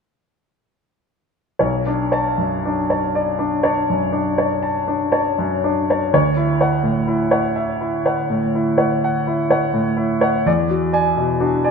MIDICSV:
0, 0, Header, 1, 2, 480
1, 0, Start_track
1, 0, Key_signature, 2, "minor"
1, 0, Tempo, 1047120
1, 735, Time_signature, 9, 3, 24, 8
1, 1211, Tempo, 1001669
1, 2651, Tempo, 977199
1, 4091, Tempo, 943396
1, 5684, End_track
2, 0, Start_track
2, 0, Title_t, "Grand piano"
2, 0, Program_c, 0, 0
2, 730, Note_on_c, 0, 73, 33
2, 733, Note_on_c, 0, 35, 39
2, 836, Control_c, 0, 64, 127
2, 855, Note_on_c, 0, 62, 31
2, 925, Note_off_c, 0, 73, 0
2, 971, Note_on_c, 0, 73, 30
2, 975, Note_on_c, 0, 81, 41
2, 1046, Note_off_c, 0, 62, 0
2, 1080, Note_off_c, 0, 73, 0
2, 1082, Note_off_c, 0, 81, 0
2, 1090, Note_on_c, 0, 42, 27
2, 1217, Note_on_c, 0, 62, 32
2, 1282, Note_off_c, 0, 42, 0
2, 1335, Note_on_c, 0, 73, 30
2, 1337, Note_on_c, 0, 81, 31
2, 1408, Note_off_c, 0, 62, 0
2, 1442, Note_off_c, 0, 73, 0
2, 1443, Note_off_c, 0, 81, 0
2, 1455, Note_on_c, 0, 74, 34
2, 1569, Note_on_c, 0, 62, 31
2, 1644, Note_off_c, 0, 74, 0
2, 1682, Note_off_c, 0, 62, 0
2, 1686, Note_on_c, 0, 73, 31
2, 1689, Note_on_c, 0, 62, 33
2, 1689, Note_on_c, 0, 81, 33
2, 1795, Note_off_c, 0, 73, 0
2, 1797, Note_off_c, 0, 81, 0
2, 1812, Note_on_c, 0, 42, 29
2, 1881, Note_off_c, 0, 62, 0
2, 1922, Note_on_c, 0, 62, 33
2, 2002, Note_off_c, 0, 42, 0
2, 2045, Note_on_c, 0, 73, 30
2, 2047, Note_on_c, 0, 81, 30
2, 2120, Note_off_c, 0, 62, 0
2, 2154, Note_off_c, 0, 81, 0
2, 2155, Note_off_c, 0, 73, 0
2, 2162, Note_on_c, 0, 81, 35
2, 2281, Note_on_c, 0, 62, 34
2, 2359, Note_off_c, 0, 81, 0
2, 2398, Note_on_c, 0, 81, 37
2, 2400, Note_on_c, 0, 73, 31
2, 2479, Note_off_c, 0, 62, 0
2, 2513, Note_off_c, 0, 81, 0
2, 2514, Note_off_c, 0, 73, 0
2, 2525, Note_on_c, 0, 42, 34
2, 2648, Note_on_c, 0, 62, 33
2, 2722, Note_off_c, 0, 42, 0
2, 2776, Note_on_c, 0, 81, 33
2, 2777, Note_on_c, 0, 73, 30
2, 2846, Note_off_c, 0, 62, 0
2, 2876, Note_off_c, 0, 35, 0
2, 2885, Note_off_c, 0, 73, 0
2, 2885, Note_off_c, 0, 81, 0
2, 2889, Note_on_c, 0, 38, 39
2, 2893, Note_on_c, 0, 73, 39
2, 2905, Control_c, 0, 64, 0
2, 2980, Control_c, 0, 64, 127
2, 3004, Note_on_c, 0, 64, 34
2, 3087, Note_off_c, 0, 73, 0
2, 3123, Note_on_c, 0, 73, 30
2, 3127, Note_on_c, 0, 78, 41
2, 3201, Note_off_c, 0, 64, 0
2, 3233, Note_on_c, 0, 45, 31
2, 3235, Note_off_c, 0, 73, 0
2, 3238, Note_off_c, 0, 78, 0
2, 3352, Note_on_c, 0, 64, 33
2, 3434, Note_off_c, 0, 45, 0
2, 3469, Note_on_c, 0, 73, 32
2, 3471, Note_on_c, 0, 78, 33
2, 3553, Note_off_c, 0, 64, 0
2, 3587, Note_off_c, 0, 73, 0
2, 3588, Note_off_c, 0, 78, 0
2, 3590, Note_on_c, 0, 76, 34
2, 3712, Note_on_c, 0, 64, 33
2, 3793, Note_off_c, 0, 76, 0
2, 3835, Note_on_c, 0, 73, 32
2, 3840, Note_on_c, 0, 78, 34
2, 3913, Note_off_c, 0, 64, 0
2, 3950, Note_off_c, 0, 73, 0
2, 3953, Note_off_c, 0, 78, 0
2, 3953, Note_on_c, 0, 45, 34
2, 4078, Note_on_c, 0, 64, 35
2, 4156, Note_off_c, 0, 45, 0
2, 4192, Note_on_c, 0, 73, 31
2, 4194, Note_on_c, 0, 78, 33
2, 4282, Note_off_c, 0, 64, 0
2, 4313, Note_off_c, 0, 73, 0
2, 4314, Note_off_c, 0, 78, 0
2, 4327, Note_on_c, 0, 78, 40
2, 4443, Note_on_c, 0, 64, 37
2, 4526, Note_off_c, 0, 78, 0
2, 4562, Note_on_c, 0, 73, 36
2, 4566, Note_on_c, 0, 78, 37
2, 4641, Note_off_c, 0, 64, 0
2, 4676, Note_off_c, 0, 73, 0
2, 4678, Note_off_c, 0, 78, 0
2, 4680, Note_on_c, 0, 45, 37
2, 4797, Note_on_c, 0, 64, 38
2, 4878, Note_off_c, 0, 45, 0
2, 4923, Note_on_c, 0, 73, 35
2, 4933, Note_on_c, 0, 78, 39
2, 4997, Note_off_c, 0, 64, 0
2, 5030, Note_off_c, 0, 38, 0
2, 5035, Note_off_c, 0, 73, 0
2, 5041, Note_off_c, 0, 78, 0
2, 5049, Note_on_c, 0, 40, 46
2, 5052, Note_on_c, 0, 74, 41
2, 5063, Control_c, 0, 64, 0
2, 5154, Control_c, 0, 64, 127
2, 5170, Note_on_c, 0, 66, 36
2, 5244, Note_off_c, 0, 74, 0
2, 5287, Note_on_c, 0, 74, 34
2, 5290, Note_on_c, 0, 80, 50
2, 5362, Note_off_c, 0, 66, 0
2, 5397, Note_off_c, 0, 74, 0
2, 5399, Note_off_c, 0, 80, 0
2, 5409, Note_on_c, 0, 47, 35
2, 5527, Note_on_c, 0, 66, 39
2, 5528, Note_on_c, 0, 62, 37
2, 5602, Note_off_c, 0, 47, 0
2, 5651, Note_on_c, 0, 74, 37
2, 5653, Note_on_c, 0, 80, 38
2, 5684, Note_off_c, 0, 40, 0
2, 5684, Note_off_c, 0, 62, 0
2, 5684, Note_off_c, 0, 66, 0
2, 5684, Note_off_c, 0, 74, 0
2, 5684, Note_off_c, 0, 80, 0
2, 5684, End_track
0, 0, End_of_file